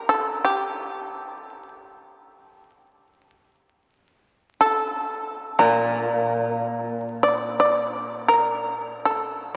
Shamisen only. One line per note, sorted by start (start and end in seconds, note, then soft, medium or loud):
0.09 0.44 A4 medium
0.45 1.38 G4 medium
1.38 1.62 G#4 medium
1.62 1.90 G4 medium
1.90 2.15 G#4 medium
2.15 3.07 G4 medium
4.61 5.56 A4 medium
5.59 6.51 A#4 medium
6.51 7.19 A4 medium
7.23 7.57 D5 medium
7.60 8.24 D5 medium
8.28 8.99 A#4 medium
9.05 9.54 A4 soft